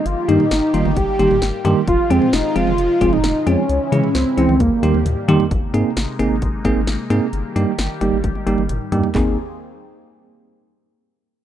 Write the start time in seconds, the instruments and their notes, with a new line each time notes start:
Already playing: analog synth pad A#3
0.06 analog synth bass G1, analog synth pad D#3 G3 G4, soft synth lead F4, closed hi-hat
0.28 analog synth bass G2, tine electric piano D#3 G3 A#3 D#4 G4, soft synth lead D#4, closed hi-hat
0.40 mid tom
0.51 analog synth bass G1, snare, closed hi-hat
0.74 analog synth bass G1, tine electric piano D#3 G3 A#3 D#4 F4, closed hi-hat
0.85 analog synth bass G1, mid tom
0.97 analog synth bass G1, soft synth lead G4, kick, closed hi-hat
1.19 analog synth bass G1, tine electric piano D#3 G3 A#3 D#4 G4, closed hi-hat, cowbell
1.31 analog synth bass G1, mid tom
1.42 analog synth bass G1, snare, closed hi-hat
1.65 analog synth bass G2, tine electric piano D#3 G3 A#3 D#4 G4, closed hi-hat, cowbell
1.88 analog synth bass F1, analog synth pad C3 F3 G#3 F4, soft synth lead F4, kick, closed hi-hat
2.10 analog synth bass F2, tine electric piano F3 G#3 C4 F4 G#4, soft synth lead C4, closed hi-hat
2.22 mid tom
2.33 analog synth bass F1, soft synth lead D#4, snare, closed hi-hat
2.56 analog synth bass F1, tine electric piano F3 G#3 C4 F4 G#4, soft synth lead F4, closed hi-hat
2.67 analog synth bass F1, mid tom
2.78 analog synth bass F1, closed hi-hat
3.01 analog synth bass F1, tine electric piano F3 G#3 C4 F4 G#4, kick, closed hi-hat, cowbell
3.13 analog synth bass F1, soft synth lead D#4, mid tom
3.24 analog synth bass F1, snare, closed hi-hat
3.46 analog synth bass F2, tine electric piano F3 G#3 C4 F4 G#4, soft synth lead C#4, closed hi-hat, cowbell
3.69 analog synth bass C#2, analog synth pad C#3 E3 G#3 E4, closed hi-hat
3.92 analog synth bass C#3, tine electric piano E3 G#3 C#4 E4 G#4, closed hi-hat
4.04 mid tom
4.15 analog synth bass C#2, soft synth lead C4, snare, closed hi-hat
4.38 analog synth bass C#2, tine electric piano E3 G#3 C#4 E4 G#4, soft synth lead C4, closed hi-hat
4.49 analog synth bass C#2, mid tom
4.60 analog synth bass D#2, analog synth pad D#3 G3 A#3 G4, soft synth lead A#3, kick, closed hi-hat, high tom
4.83 analog synth bass D#2, tine electric piano D#3 G3 A#3 D#4 G4, closed hi-hat, mid tom
4.94 analog synth bass D#2, mid tom
5.06 analog synth bass D#2, closed hi-hat, mid tom
5.28 analog synth bass D#3, tine electric piano D#3 G3 A#3 D#4 G4, closed hi-hat, floor tom
5.40 floor tom
5.51 analog synth bass G#1, analog synth pad C3 G#3 A#3 D#4, kick, closed hi-hat
5.74 analog synth bass G#2, tine electric piano A#3 C4 D#4 G#4, closed hi-hat
5.97 analog synth bass G#1, snare, closed hi-hat
6.19 analog synth bass G#1, tine electric piano A#3 C4 D#4 G#4, closed hi-hat
6.31 analog synth bass G#1
6.42 analog synth bass G#1, kick, closed hi-hat
6.65 analog synth bass G#1, tine electric piano A#3 C4 D#4 G#4, kick, closed hi-hat
6.76 analog synth bass G#1
6.87 analog synth bass G#1, snare, closed hi-hat
7.10 analog synth bass G#2, tine electric piano A#3 C4 D#4 G#4, closed hi-hat
7.33 analog synth bass G1, analog synth pad D#3 G3 G4, closed hi-hat
7.56 analog synth bass G2, tine electric piano G3 A#3 D#4 G4, closed hi-hat
7.78 analog synth bass G1, snare, closed hi-hat
8.01 analog synth bass G1, tine electric piano G3 A#3 D#4 G4, closed hi-hat
8.13 analog synth bass G1
8.24 analog synth bass G1, kick, closed hi-hat, high tom
8.35 high tom
8.47 analog synth bass G1, tine electric piano G3 A#3 D#4 G4, closed hi-hat
8.58 analog synth bass G1, mid tom
8.69 analog synth bass G1, closed hi-hat, mid tom
8.92 analog synth bass G2, tine electric piano G3 A#3 D#4 G4, closed hi-hat, floor tom
9.04 floor tom
9.15 analog synth bass G#1, analog synth pad D#3 A#3 C4 G#4, tine electric piano A#3 C4 D#4 G#4, kick, clap, floor tom